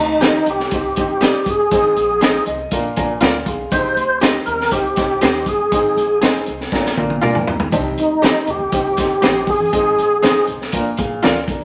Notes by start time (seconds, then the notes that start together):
Already playing: D2 C3
0.00 D#4
0.21 D#2 C4 D#4 G4 C5 D#5, snare, closed hi-hat, tambourine
0.46 C2 G4, closed hi-hat
0.60 snare
0.71 C2 C4 D#4 G4 C5, kick, closed hi-hat, tambourine
0.75 G4
0.96 D#2 C4 D#4 G4 C5, kick, closed hi-hat
1.21 A#1 C4 D#4 G4 C5 D5 D#5, snare, closed hi-hat, tambourine
1.46 G1 G#4, kick, closed hi-hat
1.71 G#1 G#2 C4 D#4 G#4 C5, kick, closed hi-hat, tambourine
1.96 A#1, closed hi-hat
2.20 C4 D#4 G#4 C5 D#5, snare, closed hi-hat, tambourine
2.46 C2 D#5, closed hi-hat
2.71 A#1 A#2 A#3 D4 F4 A#4 F5, kick, closed hi-hat, tambourine
2.96 A#1 A#3 D4 F4 A#4 G#5, kick, closed hi-hat
3.21 D2 F4 A#4 D5 A#5, snare, closed hi-hat, tambourine
3.46 B1 G#4 F5 C6, kick, closed hi-hat
3.71 C2 C3 C4 D#4 G4 C5, kick, closed hi-hat, tambourine
3.96 D2, closed hi-hat
4.20 C4 D#4 G4 C5 D#5, snare, closed hi-hat, tambourine
4.46 D#2 A#4, closed hi-hat
4.61 snare
4.71 C2 C4 D#4 G4 C5, kick, closed hi-hat, tambourine
4.96 C2 C4 D#4 G4 C5, kick, snare, closed hi-hat
5.21 D#2 C4 D#4 G4 C5 D#5, snare, closed hi-hat, tambourine
5.46 G1 G#4, kick, closed hi-hat
5.72 G#1 G#2 C4 D#4 G#4 C5, kick, closed hi-hat, tambourine
5.96 A#1, closed hi-hat
6.21 C4 D#4 G#4 C5 D#5, snare, closed hi-hat, tambourine
6.46 C2, closed hi-hat
6.61 snare
6.72 A#1 A#2 A#3 D4 F4 A#4, kick, snare, tambourine
6.86 snare
6.97 A#1 A#3 D4 F4 A#4 F5, high tom
7.10 high tom
7.21 D2 A#3 D4 F4 A#4 D5 G#5, mid tom, tambourine
7.35 mid tom
7.47 B1 A#5, floor tom
7.60 floor tom
7.71 C2 C3 C4 D4 D#4 G4 C5, kick, closed hi-hat, tambourine, muted conga
7.97 D2 D#4, closed hi-hat
8.22 C4 D#4 G4 C5 D#5, snare, closed hi-hat, tambourine, high conga
8.47 D#2 G4, closed hi-hat, low conga
8.59 C2
8.72 C2 C4 D#4 G4 C5, kick, closed hi-hat, tambourine, muted conga
8.97 D#2 C4 D#4 G4 C5, kick, snare, closed hi-hat, muted conga, low conga
9.22 A#1 C4 D#4 G4 C5 D#5, snare, closed hi-hat, tambourine, high conga
9.47 G1 G#4, kick, open hi-hat
9.60 high conga
9.72 G#1 G#2 C4 D#4 G#4 C5, kick, closed hi-hat, tambourine, muted conga
9.98 A#1, closed hi-hat
10.22 C4 D#4 G#4 C5 D#5, snare, closed hi-hat, tambourine, high conga
10.47 C2, closed hi-hat, low conga
10.62 snare
10.72 A#1 A#2 A#3 D4 F4 A#4, kick, closed hi-hat, tambourine, muted conga
10.97 A#1 G#4 F5, kick, closed hi-hat, muted conga
11.23 D2 F4 A#4 D5, snare, closed hi-hat, tambourine, high conga
11.48 B1 D4 A#4, kick, closed hi-hat